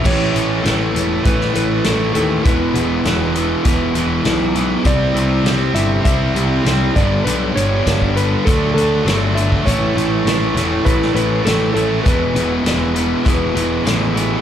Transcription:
<<
  \new Staff \with { instrumentName = "Electric slide guitar" } { \time 4/4 \key e \dorian \tempo 4 = 100 cis''2 b'8 b'8 a'8 a'8 | b'2 r2 | d''4. e''8 e''4. d''8 | b'8 cis''4 b'8 a'8 a'4 e''8 |
cis''2 b'8 b'8 a'8 a'8 | b'2 r2 | }
  \new Staff \with { instrumentName = "Twelve-string acoustic guitar" } { \time 4/4 \key e \dorian <a, e b cis' e'>4 <e b e'>4 <a, e b cis' e'>4 cis'4 | <e, b, e gis b e'>4 <e gis b e'>8 <e gis b e'>8 <e, b, e gis b e'>4 <e gis b e'>4 | <c e g d' e'>4 <e e'>8 <g e'>8 <c e g d'>4 <e g d' e'>8 <g, d g b d' g'>8~ | <g, d g b d' g'>4 <g b d' g'>8 <g b d' g'>8 <d a d' fis'>4 <d a fis'>8 <a d' fis'>8 |
<a, e b cis' e'>4 <e b cis' e'>8 <b cis' e'>8 <a, e b cis' e'>4 <e b e'>4 | <e, b, e gis b gis'>4 e4 <e, b, e gis b gis'>4 <e gis b gis'>4 | }
  \new Staff \with { instrumentName = "Overdriven electric guitar" } { \time 4/4 \key e \dorian <a, e a cis' e'>8 <a, e a cis' e'>8 <a, e a cis' e'>8 <a, e a cis' e'>8 <a, e a cis' e'>8 <a, e a cis' e'>8 <a, e a cis' e'>8 <a, e a cis' e'>8 | <e gis b e'>8 <e gis b e'>8 <e gis b e'>8 <e gis b e'>8 <e gis b e'>8 <e gis b e'>8 <e gis b e'>8 <e gis b e'>8 | <c g c' e'>8 <c g c' e'>8 <c g c' e'>8 <c g c' e'>8 <c g c' e'>8 <c g c' e'>8 <c g c' e'>8 <g, d g b d'>8 | <g, d g b d'>8 <g, d g b d'>8 <g, d g b d'>8 <g, d g b d'>8 <d fis a d'>8 <d fis a d'>8 <d fis a d'>8 <d fis a d'>8 |
<a, e a cis' e'>8 <a, e a cis' e'>8 <a, e a cis' e'>8 <a, e a cis' e'>8 <a, e a cis' e'>8 <a, e a cis' e'>8 <a, e a cis' e'>8 <a, e a cis' e'>8 | <e gis b e'>8 <e gis b e'>8 <e gis b e'>8 <e gis b e'>8 <e gis b e'>8 <e gis b e'>8 <e gis b e'>8 <e gis b e'>8 | }
  \new Staff \with { instrumentName = "Overdriven electric guitar" } { \clef bass \time 4/4 \key e \dorian <a, e a>8 <a, e a>8 <a, e a>8 <a, e a>8 <a, e a>8 <a, e a>8 <a, e a>8 <a, e a>8 | <e, b, e>8 <e, b, e>8 <e, b, e>8 <e, b, e>8 <e, b, e>8 <e, b, e>8 <e, b, e>8 <e, b, e>8 | <c g c'>8 <c g c'>8 <c g c'>8 <c g c'>8 <c g c'>8 <c g c'>8 <c g c'>8 <g, d g>8 | <g, d g>8 <g, d g>8 <g, d g>8 <g, d g>8 <d a d'>8 <d a d'>8 <d a d'>8 <d a d'>8 |
<a, e a>8 <a, e a>8 <a, e a>8 <a, e a>8 <a, e a>8 <a, e a>8 <a, e a>8 <a, e a>8 | <e, b, e>8 <e, b, e>8 <e, b, e>8 <e, b, e>8 <e, b, e>8 <e, b, e>8 <e, b, e>8 <e, b, e>8 | }
  \new Staff \with { instrumentName = "Picked electric bass" } { \clef bass \time 4/4 \key e \dorian a,,8 a,,8 a,,8 e,,8 a,,8 a,,8 a,,8 dis,8 | e,,8 e,,8 e,,4 e,,8 e,,8 b,,4 | c,8 c,8 c,8 g,,8 c,8 c,8 c,8 g,,8 | b,,8 g,,8 g,,4 d,8 d,8 g,,4 |
a,,8 a,,8 a,,8 e,,8 a,,8 a,,8 a,,8 a,,8 | e,,8 e,,8 e,,4 e,,8 e,,8 a,,4 | }
  \new DrumStaff \with { instrumentName = "Drums" } \drummode { \time 4/4 <cymc bd>8 hh8 <hh sn>8 hh8 <hh bd>16 sn16 hh8 <hh sn>8 hh8 | <hh bd>8 hh8 <hh sn>8 hh8 <hh bd>8 hh8 <hh sn>8 hh8 | <hh bd>8 hh8 <hh sn>8 hh8 <hh bd>8 hh8 <hh sn>8 <hh bd>8 | hh8 hh8 <hh bd sn>16 bd16 hh8 <hh bd>8 hh8 <hh sn>8 hh16 bd16 |
<hh bd>8 hh8 <hh sn>8 <hh sn>8 <hh bd>16 sn16 hh8 <hh sn>8 hh8 | <hh bd>8 hh8 <hh sn>8 hh8 <hh bd>8 hh8 <hh sn>8 hh8 | }
>>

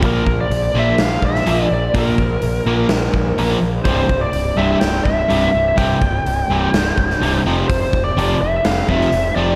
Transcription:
<<
  \new Staff \with { instrumentName = "Lead electric guitar" } { \time 4/4 \key bes \lydian \tempo 4 = 125 bes'8. d''8. e''8 f''8 e''4 d''8 | bes'2.~ bes'8 r8 | c''8. d''8. e''8 g''8 e''4 e''8 | g''2.~ g''8 r8 |
c''8. d''8. e''8 f''8 e''4 d''8 | }
  \new Staff \with { instrumentName = "Overdriven electric guitar" } { \clef bass \time 4/4 \key bes \lydian <bes, f bes>8 r4 <bes, f bes>8 r4 <bes, f bes>8 r8 | <bes, f bes>8 r4 <bes, f bes>8 r4 <bes, f bes>8 r8 | <c, g, c>8 r4 <c, g, c>8 r4 <c, g, c>8 r8 | <c, g, c>8 r4 <c, g, c>8 r4 <c, g, c>8 <f, c f>8 |
r4 <f, c f>8 r4 <f, c f>8 r8 <f, c f>8 | }
  \new Staff \with { instrumentName = "Overdriven electric guitar" } { \clef bass \time 4/4 \key bes \lydian <bes, f bes>8 r4 <bes, f bes>8 r4 <bes, f bes>8 r8 | <bes, f bes>8 r4 <bes, f bes>8 r4 <bes, f bes>8 r8 | <c, g, c>8 r4 <c, g, c>8 r4 <c, g, c>8 r8 | <c, g, c>8 r4 <c, g, c>8 r4 <c, g, c>8 <f, c f>8 |
r4 <f, c f>8 r4 <f, c f>8 r8 <f, c f>8 | }
  \new Staff \with { instrumentName = "Picked electric bass" } { \clef bass \time 4/4 \key bes \lydian bes,,8 bes,,8 bes,,8 bes,,8 bes,,8 bes,,8 bes,,8 bes,,8 | bes,,8 bes,,8 bes,,8 bes,,8 bes,,8 bes,,8 bes,,8 bes,,8 | c,,8 c,,8 c,,8 c,,8 c,,8 c,,8 c,,8 c,,8 | c,,8 c,,8 c,,8 c,,8 c,,8 c,,8 c,,8 f,,8 |
f,,8 f,,8 f,,8 f,,8 f,,8 f,,8 f,,8 f,,8 | }
  \new DrumStaff \with { instrumentName = "Drums" } \drummode { \time 4/4 <hho bd>8 bd8 hho4 <hho sn>8 bd16 sn16 hho4 | <hho bd>8 bd8 hho4 <hho sn>8 bd8 hho4 | <hho bd>8 bd8 hho4 <hho sn>8 bd8 hho4 | <hho bd>8 bd8 hho4 <hho sn>8 bd16 sn16 hho4 |
<hho bd>8 bd8 hho4 <hho sn>8 bd16 sn16 hho4 | }
>>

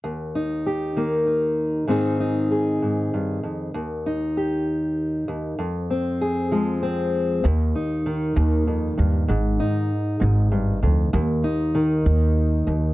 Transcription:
<<
  \new Staff \with { instrumentName = "Steel-string acoustic guitar" } { \clef bass \time 6/8 \key ees \major \tempo 4. = 65 << { r8 ees'8 g'8 bes8 ees'4 | <ees c' ees' aes'>8 ees'8 aes'2 | r8 ees'8 g'2 | r8 c'8 aes'8 aes8 c'4 |
r8 ees'2~ ees'8 | r8 ees'2~ ees'8 | r8 ees'2~ ees'8 | } \\ { ees,4. ees4. | aes,4. aes,8 g,8 f,8 | ees,2~ ees,8 ees,8 | f,4. f4. |
ees,4 ees8 ees,8 f,8 g,8 | aes,4. aes,8 g,8 f,8 | ees,4 ees4. ees,8 | } >> }
  \new Staff \with { instrumentName = "Upright bass" } { \clef bass \time 6/8 \key ees \major r2. | r2. | r2. | r2. |
ees,8 r4 ees,4 ees,8 | aes,,8 r4 aes,,4 d,8 | ees,8 r4 ees,4 ees,8 | }
>>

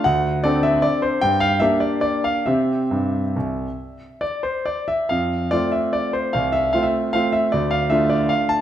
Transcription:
\new Staff \with { instrumentName = "Grand piano" } { \time 3/4 \key f \major \tempo 4 = 149 << { fis''4 d''8 e''8 d''8 c''8 | g''8 f''8 e''8 d''8 d''8 f''8 | e''2.~ | e''4 d''8 c''8 d''8 e''8 |
f''4 d''8 e''8 d''8 c''8 | f''8 e''8 f''16 e''8. f''8 e''8 | d''8 f''8 e''8 d''8 f''8 a''8 | } \\ { d,4 <c' d' a'>2 | g,4 <bes d' g'>2 | <c c' g'>4 g,4 c,4 | r2. |
f,4 <a c' f'>2 | c,4 <a c' f'>4 <a c' f'>4 | d,4 <a d' f'>2 | } >> }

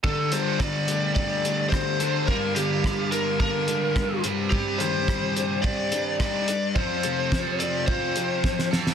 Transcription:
<<
  \new Staff \with { instrumentName = "Lead electric guitar" } { \time 4/4 \key d \phrygian \tempo 4 = 107 a'8 c''8 d''4 d''4 c''4 | bes'8 g'4 bes'8 bes'4. r8 | g'8 c''4. d''4 d''4 | c''4. d''8 c''4. r8 | }
  \new Staff \with { instrumentName = "Overdriven electric guitar" } { \time 4/4 \key d \phrygian <d g d' a'>2.~ <d g d' a'>8 <d g d' a'>8 | <g, d g bes d'>2.~ <g, d g bes d'>8 <g c' g'>8~ | <g c' g'>2. <g c' ees' g'>8 r8 | <f c' f' a'>2.~ <f c' f' a'>8 <f c' f' a'>8 | }
  \new Staff \with { instrumentName = "Distorted electric guitar" } { \clef bass \time 4/4 \key d \phrygian d8 g8 d8 a8 d'8 a8 d8 a8 | g,8 d8 g8 d'8 a'8 d'8 g8 g,8 | g,8 ees8 g8 d'8 g'8 d'8 g8 d'8 | f,8 c8 f8 c'8 f'8 c'8 f8 c'8 | }
  \new DrumStaff \with { instrumentName = "Drums" } \drummode { \time 4/4 bd8 hh8 <bd ss>8 hh8 bd8 hh8 <bd ss>8 hh8 | bd8 hh8 <bd ss>8 hh8 bd8 hh8 <bd ss>8 hh8 | bd8 hh8 <bd ss>8 hh8 bd8 hh8 <bd ss>8 hh8 | bd8 hh8 <bd sn>8 hh8 bd8 hh8 <bd sn>16 sn16 sn16 sn16 | }
>>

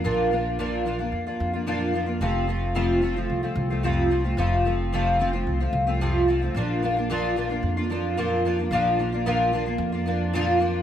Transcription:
<<
  \new Staff \with { instrumentName = "Twelve-string acoustic guitar" } { \time 4/4 \key bes \major \tempo 4 = 111 <bes, f bes d' f'>8 <f bes d' f'>8 <bes, f bes d' f'>8 <f bes d' f'>16 <bes d' f'>8 <bes d' f'>8 <bes d' f'>16 <bes, f bes d' f'>8 <f bes d' f'>16 <bes d' f'>16 | <f, c f a c' f'>8 <f a c' f'>8 <f, c f a c' f'>8 <f a c' f'>16 <f a c' f'>8 <f a c' f'>8 <f a c' f'>16 <f, c f a c' f'>8 <f a c' f'>16 <f a c' f'>16 | <f, c f a c' f'>8 <f a c' f'>8 <f, c f a c' f'>8 <f a c' f'>16 <f a c' f'>8 <f a c' f'>8 <f a c' f'>16 <f, c f a c' f'>8 <f a c' f'>16 <f a c' f'>16 | <bes, f bes d' f'>8 <f bes d' f'>16 <bes d' f'>16 <bes, f bes d' f'>8 <f bes d' f'>16 <bes d' f'>8 <bes d' f'>16 <f bes d' f'>8 <bes, f bes d' f'>8 <f bes d' f'>16 <bes d' f'>16 |
<bes, f bes d' f'>8 <f bes d' f'>16 <bes d' f'>16 <bes, f bes d' f'>8 <f bes d' f'>16 <bes d' f'>8 <bes d' f'>16 <f bes d' f'>8 <bes, f bes d' f'>8 <f bes d' f'>8 | }
  \new Staff \with { instrumentName = "Upright bass" } { \clef bass \time 4/4 \key bes \major bes,,2 f,8 f,4. | f,,2 c,8 c,4. | f,,2 c,8 c,4. | bes,,2 f,2 |
bes,,2 f,2 | }
>>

